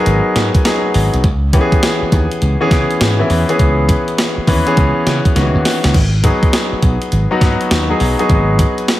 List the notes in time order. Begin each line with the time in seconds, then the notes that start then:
Already playing: F#3 B3 D#4 G#4 A#4
0.06 G#1, closed hi-hat
0.36 G#2, snare, closed hi-hat
0.55 kick, closed hi-hat
0.65 F#3 B3 D#4 G#4, snare, closed hi-hat
0.94 G#1, open hi-hat
1.14 B1, closed hi-hat
1.24 C#2, kick, closed hi-hat
1.53 E3 B3 C#4 G4, kick, closed hi-hat
1.61 G#4
1.72 kick, closed hi-hat
1.83 snare, closed hi-hat
2.02 muted slap bass stroke
2.12 D#2, kick, closed hi-hat
2.31 closed hi-hat
2.42 C#2, closed hi-hat
2.61 E3 B3 C#4 G#4
2.71 C#3, kick, snare, closed hi-hat
2.91 closed hi-hat
3.01 G#2, snare, closed hi-hat
3.19 E3 B3 C#4 E4
3.30 E2, open hi-hat
3.49 E3 B3 C#4 G#4, closed hi-hat
3.59 C#2, kick, closed hi-hat
3.89 kick, closed hi-hat
4.08 closed hi-hat
4.18 snare, closed hi-hat
4.38 muted slap bass stroke
4.47 D#2 E3 B3 C#4 B4, kick, open hi-hat
4.66 E3 B3 C#4 G#4, closed hi-hat
4.77 C#2, kick, closed hi-hat
5.06 C#3, snare, closed hi-hat
5.25 kick, closed hi-hat
5.35 C#2 D#3 B3 C#4 F#4, snare, closed hi-hat
5.42 E3
5.55 D#2
5.65 snare, open hi-hat
5.84 C#2, snare, closed hi-hat
5.94 G#1, kick, crash
6.23 F#3 B3 D#4 G#4, kick, closed hi-hat
6.43 kick, closed hi-hat
6.53 snare, closed hi-hat
6.72 muted slap bass stroke
6.83 B1, kick, closed hi-hat
7.02 closed hi-hat
7.12 G#1, closed hi-hat
7.31 F#3 B3 D#4 F#4
7.41 G#2, kick, snare, closed hi-hat
7.61 closed hi-hat
7.71 D#2, snare, closed hi-hat
7.89 F#3 B3 D#4 G#4
8.00 B1, open hi-hat
8.19 F#3 B3 D#4 G#4, closed hi-hat
8.30 G#1, kick, closed hi-hat
8.59 kick, closed hi-hat
8.78 closed hi-hat
8.88 snare, closed hi-hat